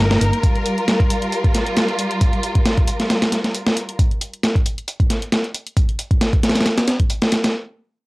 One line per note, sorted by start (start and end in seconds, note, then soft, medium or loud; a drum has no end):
0.00 0.16 G1 medium
0.00 0.39 A#3 medium
0.00 0.39 D#4 medium
0.00 3.95 A#4 medium
0.11 snare loud
0.11 closed hi-hat soft
0.21 0.30 G1 medium
0.21 closed hi-hat medium
0.33 closed hi-hat soft
0.43 3.95 G3 medium
0.43 3.96 F4 medium
0.43 kick loud
0.43 closed hi-hat medium
0.43 closed hi-hat soft
0.55 closed hi-hat soft
0.66 closed hi-hat medium
0.78 closed hi-hat soft
0.88 snare loud
0.88 closed hi-hat medium
0.88 closed hi-hat soft
1.00 kick medium
1.00 closed hi-hat soft
1.10 closed hi-hat medium
1.22 closed hi-hat soft
1.32 closed hi-hat soft
1.32 closed hi-hat medium
1.44 kick medium
1.44 closed hi-hat soft
1.55 snare soft
1.55 closed hi-hat medium
1.66 closed hi-hat soft
1.77 snare loud
1.77 closed hi-hat soft
1.77 closed hi-hat medium
1.88 closed hi-hat soft
1.99 closed hi-hat medium
2.11 closed hi-hat soft
2.21 kick loud
2.21 closed hi-hat soft
2.21 closed hi-hat medium
2.33 closed hi-hat soft
2.43 closed hi-hat medium
2.55 kick medium
2.55 closed hi-hat soft
2.66 snare loud
2.66 closed hi-hat soft
2.66 closed hi-hat medium
2.77 kick medium
2.77 closed hi-hat soft
2.88 closed hi-hat medium
3.00 snare soft
3.00 closed hi-hat soft
3.10 snare medium
3.10 closed hi-hat medium
3.10 closed hi-hat soft
3.22 snare loud
3.22 closed hi-hat soft
3.22 closed hi-hat medium
3.32 snare soft
3.32 closed hi-hat medium
3.44 snare soft
3.44 closed hi-hat soft
3.54 closed hi-hat soft
3.54 closed hi-hat medium
3.67 snare loud
3.67 closed hi-hat soft
3.77 closed hi-hat medium
3.89 closed hi-hat soft
3.99 kick loud
3.99 closed hi-hat medium
3.99 closed hi-hat soft
4.11 closed hi-hat soft
4.21 closed hi-hat medium
4.34 closed hi-hat soft
4.43 snare loud
4.43 closed hi-hat medium
4.43 closed hi-hat soft
4.55 kick medium
4.55 closed hi-hat soft
4.66 closed hi-hat medium
4.78 closed hi-hat soft
4.88 closed hi-hat medium
4.88 closed hi-hat soft
5.00 kick medium
5.00 closed hi-hat soft
5.10 snare soft
5.10 closed hi-hat medium
5.22 closed hi-hat soft
5.32 snare loud
5.32 closed hi-hat soft
5.32 closed hi-hat medium
5.44 closed hi-hat soft
5.54 closed hi-hat medium
5.67 closed hi-hat soft
5.77 kick loud
5.77 closed hi-hat medium
5.77 closed hi-hat soft
5.89 closed hi-hat soft
5.99 closed hi-hat medium
6.11 kick medium
6.11 closed hi-hat soft
6.21 snare loud
6.21 closed hi-hat medium
6.21 closed hi-hat soft
6.33 kick medium
6.33 closed hi-hat soft
6.43 snare medium
6.43 closed hi-hat medium
6.49 snare medium
6.49 closed hi-hat medium
6.55 snare medium
6.55 closed hi-hat soft
6.55 closed hi-hat medium
6.61 snare medium
6.61 closed hi-hat medium
6.66 snare loud
6.66 closed hi-hat soft
6.66 closed hi-hat medium
6.78 snare loud
6.78 closed hi-hat soft
6.78 closed hi-hat medium
6.88 snare loud
6.88 closed hi-hat medium
7.00 kick medium
7.00 closed hi-hat soft
7.10 closed hi-hat soft
7.10 closed hi-hat medium
7.22 snare loud
7.22 closed hi-hat soft
7.32 snare loud
7.32 closed hi-hat medium
7.44 snare loud
7.44 closed hi-hat soft
7.44 closed hi-hat medium